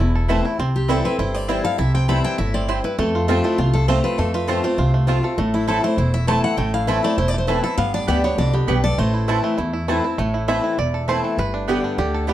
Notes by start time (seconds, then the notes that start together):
Already playing: A4
0.00 E1 E2 E4
0.15 A4
0.28 E3 A3 C4 E4 C5 A5
0.45 C4 E4
0.59 C2 C3 C4
0.76 G4
0.88 E3 G3 C4 E4 A4 C5 G5
1.05 C4 E4 B4
1.19 G1 G2 E4 C5
1.34 C4 D5
1.48 E3 G3 C4 E4 C5 E5 G5
1.64 C4 E4 A4 F5
1.78 C2 C3 E4 E5
1.94 C4 G5
2.08 E3 G3 C4 E4 A4 C5 G5 B5
2.24 E4 G5
2.38 G1 A2 E4 E5
2.54 C4 D5
2.68 G2 C4 E4 C5 G5
2.84 E4 B4
2.98 F2 A3 A4
3.15 F4
3.28 F3 A3 C4 F4 G4 C5 A5
3.44 A3 E4
3.58 C2 C3 F4
3.73 F4 A4
3.88 F3 A3 C4 F4 C5 A5
4.04 F4 B4
4.18 F2 A3 A4
4.34 F4 B4
4.48 F3 A3 C4 F4 C5 A5
4.63 A3 C4 F4 C5
4.78 C2 C3 F4
4.94 A3
5.07 F3 A3 C4 F4 C5 A5
5.23 C4 F4 A4
5.38 A1 A2 A3
5.54 E4
5.67 E3 A3 C4 E4 A4 C5 A5
5.83 A3 C4 E4 C5
5.97 E1 E4 C5
6.14 E4 E5
6.27 E3 A3 C4 E4 C5 A5
6.44 E4 F#5
6.57 A1 A2 A3 G5
6.74 E4 F5
6.87 E3 A3 C4 E4 C5 E5 A5
7.03 A3 C4 E4 D5
7.18 E1 E2 E4 C5
7.28 D5
7.34 A3
7.38 C5
7.47 E3 A3 C4 E4 B4 C5 A5
7.63 C4 E4 A4 E5
7.78 G1 G2 B3 F5
7.94 D4 D5
8.07 D2 G3 B3 D4 G4 D5 E5 G5
8.24 B3 D4 G4 C#5
8.38 C2 F2 D4 D5
8.53 B3 G4
8.67 B1 G2 B3 D4 G4 B4 D5 G5
8.84 A4 D5
8.98 A1 A2 A3 C5
9.14 E4
9.28 E3 A3 C4 E4 C5 A5
9.44 A3
9.58 E2 E4
9.73 E4
9.88 E3 A3 C4 E4 A4 C5 A5
10.04 C4 E4
10.18 A1 A2 A3
10.34 E4
10.48 E3 A3 C4 E4 C5 E5 A5
10.64 E4
10.78 E1 E2 D5
10.94 A4
11.08 E3 A3 C4 E4 C5 A5
11.24 E3
11.38 G1 G2 B4
11.54 D4
11.68 D3 G3 B3 G4 D5 G5
11.84 D4
11.98 D2 D3 G4
12.14 A4
12.27 D3 G3 B3 G4 D5 G5